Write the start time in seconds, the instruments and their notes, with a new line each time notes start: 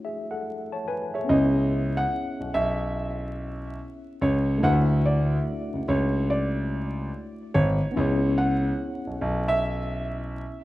Already playing: tine electric piano A3 D4 E4 F#4 C#5
0.05 tine electric piano G#4 E5
0.31 tine electric piano A4 F#5
0.72 tine electric piano C#5 A5
0.88 felt piano B4, tine electric piano B4 G#5
1.14 tine electric piano G#4 E5, felt piano C#5
1.24 tine electric piano B3 C#4
1.29 grand piano C#2, tine electric piano E4 G#4, felt piano D#5
1.34 tine electric piano C#5
1.97 felt piano F#5
2.40 grand piano B1
2.54 grand piano B1, felt piano E5
4.21 grand piano C#2, felt piano C#5
4.58 tine electric piano A3 D4
4.63 grand piano D2, tine electric piano E4 F#4, felt piano F#5
4.67 tine electric piano B4
4.74 tine electric piano E5
5.06 felt piano D5
5.73 grand piano C#2
5.88 grand piano C#2, felt piano C#5
6.30 felt piano D5
7.54 grand piano G#1, felt piano C#5
7.91 tine electric piano B3 C#4
7.96 grand piano C#2, tine electric piano E4 G#4
8.01 tine electric piano C#5
8.38 felt piano F#5
9.07 grand piano B1
9.21 grand piano B1
9.48 felt piano E5